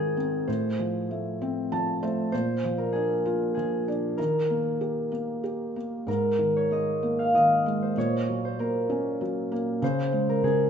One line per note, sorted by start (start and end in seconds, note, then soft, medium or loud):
0.00 0.44 G#2 medium
0.00 0.49 D#3 medium
0.00 0.15 C4 soft
0.00 0.45 D#4 medium
0.00 2.12 G#4 medium
0.00 1.18 A#4 medium
0.00 0.47 C5 loud
0.17 0.47 C4 soft
0.48 2.29 A2 medium
0.48 2.32 C5 medium
0.79 1.70 F3 soft
1.11 2.01 A3 soft
1.42 2.30 C4 medium
1.72 2.31 F3 soft
1.72 2.00 A5 medium
2.03 2.32 A3 soft
2.03 2.31 C5 medium
2.32 4.14 A#2 medium
2.32 4.30 C5 loud
2.64 3.56 F3 medium
2.78 4.17 A#4 medium
2.93 3.87 D4 soft
2.93 3.54 G#4 medium
3.26 4.16 F4 medium
3.54 4.17 F3 medium
3.54 5.82 G#4 medium
3.88 4.18 D4 medium
4.17 6.04 D#3 medium
4.17 6.08 A#4 medium
4.50 5.10 A#3 soft
4.81 5.42 G4 soft
5.12 5.75 A#3 medium
5.44 6.06 G4 soft
5.76 6.07 A#3 soft
6.07 7.92 G#2 medium
6.07 8.20 A#4 medium
6.39 7.33 D#3 soft
6.57 7.88 C#5 medium
6.71 7.65 G#3 soft
6.71 7.35 D#5 medium
7.03 7.94 A#3 medium
7.19 8.85 F5 medium
7.34 7.95 D#3 soft
7.34 9.13 D#5 medium
7.66 7.96 G#3 medium
7.82 8.04 C5 medium
7.97 9.78 A#2 medium
7.97 8.51 C#5 medium
8.29 9.20 F#3 soft
8.45 9.83 C5 medium
8.59 9.50 A#3 soft
8.59 10.29 A#4 medium
8.90 9.79 C#4 medium
9.21 9.80 F#3 medium
9.52 9.81 A#3 medium
9.82 10.42 C#3 medium
9.82 10.70 C5 loud
10.13 10.70 G#3 soft
10.29 10.70 A#4 medium
10.43 10.70 C#3 soft
10.43 10.70 G#4 medium